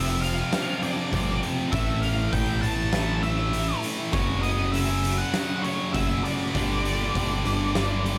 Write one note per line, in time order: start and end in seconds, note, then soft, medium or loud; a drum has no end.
0.00 0.41 F1 loud
0.00 0.36 F2 medium
0.00 0.50 F2 medium
0.00 0.37 C3 medium
0.00 0.51 C3 medium
0.00 0.52 F3 loud
0.00 0.20 E5 loud
0.06 0.20 F3 medium
0.06 0.22 A3 medium
0.06 0.22 C4 medium
0.06 0.23 F4 medium
0.21 0.37 F3 medium
0.21 0.37 A3 medium
0.21 0.36 C4 medium
0.21 0.36 F4 medium
0.21 0.83 F5 medium
0.21 open hi-hat medium
0.37 muted clean electric guitar stroke medium
0.52 1.71 F2 medium
0.52 1.72 C3 medium
0.52 snare loud
0.52 open hi-hat medium
0.56 1.73 F3 medium
0.81 0.97 F3 medium
0.81 0.97 A3 medium
0.81 0.96 C4 medium
0.81 0.96 F4 medium
0.81 1.39 D5 medium
0.81 open hi-hat medium
0.97 muted clean electric guitar stroke soft
1.11 1.40 G1 medium
1.11 1.70 F2 medium
1.11 1.71 C3 loud
1.11 1.40 F3 medium
1.11 1.42 A3 loud
1.11 1.42 C4 loud
1.11 1.43 F4 loud
1.11 kick medium
1.11 open hi-hat medium
1.41 1.58 F3 medium
1.41 1.58 A3 medium
1.41 1.56 C4 medium
1.41 1.55 F4 medium
1.41 open hi-hat medium
1.56 1.72 F3 medium
1.56 1.73 A3 medium
1.56 1.71 C4 medium
1.56 1.70 F4 medium
1.71 2.27 A1 medium
1.71 2.30 A2 medium
1.71 2.91 A2 medium
1.71 2.30 E3 loud
1.71 2.92 E3 loud
1.71 2.19 A3 loud
1.71 2.17 C#4 loud
1.71 2.15 A4 medium
1.71 2.00 E5 medium
1.71 kick loud
1.71 open hi-hat medium
1.76 2.95 A3 loud
2.02 2.31 F5 medium
2.02 open hi-hat medium
2.16 2.32 A3 medium
2.16 2.32 C#4 medium
2.16 2.32 E4 medium
2.16 2.33 A4 medium
2.31 2.60 A1 medium
2.31 2.77 A2 loud
2.31 2.78 E3 medium
2.31 2.49 A3 medium
2.31 2.48 C#4 loud
2.31 2.46 E4 loud
2.31 2.46 A4 loud
2.31 2.61 G5 loud
2.31 kick medium
2.31 open hi-hat medium
2.46 2.61 A3 medium
2.46 2.62 C#4 medium
2.46 2.62 E4 medium
2.46 2.64 A4 medium
2.61 3.72 A1 medium
2.61 2.76 A3 medium
2.61 2.76 C#4 medium
2.61 2.76 E4 medium
2.61 2.76 A4 medium
2.61 3.25 A5 loud
2.61 open hi-hat medium
2.77 muted clean electric guitar stroke medium
2.92 4.11 A2 medium
2.92 4.12 E3 medium
2.92 4.13 A3 medium
2.92 snare loud
2.92 open hi-hat medium
3.22 3.37 A3 medium
3.22 3.37 C#4 medium
3.22 3.37 E4 medium
3.22 3.36 A4 medium
3.22 3.79 E5 medium
3.22 open hi-hat soft
3.37 muted clean electric guitar stroke medium
3.52 4.11 A2 medium
3.52 4.12 E3 loud
3.52 3.81 A3 medium
3.52 3.82 C#4 loud
3.52 3.83 E4 loud
3.52 3.83 A4 loud
3.52 open hi-hat medium
3.82 4.00 A3 medium
3.82 3.99 C#4 medium
3.82 3.98 E4 medium
3.82 3.96 A4 medium
3.82 open hi-hat medium
3.98 4.13 A3 medium
3.98 4.13 C#4 medium
3.98 4.12 E4 medium
3.98 4.11 A4 medium
4.12 5.22 F#1 loud
4.12 4.71 F#2 medium
4.12 5.32 F#2 loud
4.12 4.72 C#3 medium
4.12 5.33 C#3 loud
4.12 4.60 F#3 medium
4.12 5.34 F#3 medium
4.12 4.59 A3 loud
4.12 4.58 C#4 medium
4.12 4.57 F#4 loud
4.12 4.41 C#5 medium
4.12 kick loud
4.12 open hi-hat medium
4.42 4.71 D#5 medium
4.42 open hi-hat medium
4.58 4.73 F#3 medium
4.58 4.73 A3 medium
4.58 4.74 C#4 medium
4.58 4.74 F#4 medium
4.72 5.18 F#2 medium
4.72 5.19 C#3 loud
4.72 4.89 F#3 loud
4.72 4.88 A3 loud
4.72 4.88 C#4 loud
4.72 4.86 F#4 medium
4.72 5.20 E5 loud
4.72 open hi-hat medium
4.87 5.01 F#3 medium
4.87 5.03 A3 medium
4.87 5.04 C#4 medium
4.87 5.05 F#4 medium
5.03 5.18 F#3 medium
5.03 5.18 A3 medium
5.03 5.18 C#4 medium
5.03 5.17 F#4 medium
5.03 open hi-hat medium
5.18 5.65 F#5 loud
5.18 muted clean electric guitar stroke medium
5.33 6.52 F#2 medium
5.33 6.53 C#3 medium
5.33 snare loud
5.33 open hi-hat medium
5.37 6.54 F#3 medium
5.63 5.78 F#3 medium
5.63 5.78 A3 medium
5.63 5.78 C#4 medium
5.63 5.77 F#4 medium
5.63 5.92 C#5 medium
5.63 open hi-hat medium
5.79 muted clean electric guitar stroke soft
5.93 6.22 F#1 medium
5.93 6.52 F#2 medium
5.93 6.52 C#3 medium
5.93 6.22 F#3 loud
5.93 6.23 A3 loud
5.93 6.24 C#4 medium
5.93 6.25 F#4 loud
5.93 6.24 E5 medium
5.93 kick medium
5.93 open hi-hat medium
6.24 6.41 F#3 medium
6.24 6.40 A3 medium
6.24 6.39 C#4 medium
6.24 6.37 F#4 medium
6.24 8.18 D5 medium
6.24 open hi-hat medium
6.39 6.54 F#3 medium
6.39 6.54 A3 medium
6.39 6.53 C#4 medium
6.39 6.52 F#4 medium
6.53 7.09 G1 medium
6.53 7.72 G2 medium
6.53 7.13 G2 medium
6.53 7.13 D3 loud
6.53 7.74 D3 loud
6.53 7.01 G3 medium
6.53 7.75 G3 loud
6.53 7.00 B3 medium
6.53 6.99 D4 loud
6.53 6.98 G4 loud
6.53 kick loud
6.53 open hi-hat medium
6.85 open hi-hat medium
6.99 7.14 G3 medium
6.99 7.14 B3 medium
6.99 7.15 D4 medium
6.99 7.16 G4 medium
7.14 7.42 G1 medium
7.14 7.60 G2 medium
7.14 7.60 D3 loud
7.14 7.31 G3 loud
7.14 7.30 B3 loud
7.14 7.29 D4 loud
7.14 7.28 G4 medium
7.14 kick medium
7.14 open hi-hat medium
7.29 7.42 G3 medium
7.29 7.43 B3 medium
7.29 7.44 D4 medium
7.29 7.45 G4 medium
7.43 8.18 G1 medium
7.43 7.59 G3 medium
7.43 7.59 B3 medium
7.43 7.58 D4 medium
7.43 7.58 G4 medium
7.43 snare soft
7.43 open hi-hat medium
7.59 muted clean electric guitar stroke soft
7.74 8.18 G2 medium
7.74 8.18 D3 medium
7.74 snare loud
7.74 open hi-hat medium
7.78 8.18 G3 medium
8.05 8.18 G3 medium
8.05 8.18 B3 medium
8.05 8.18 D4 medium
8.05 8.18 G4 medium
8.05 open hi-hat medium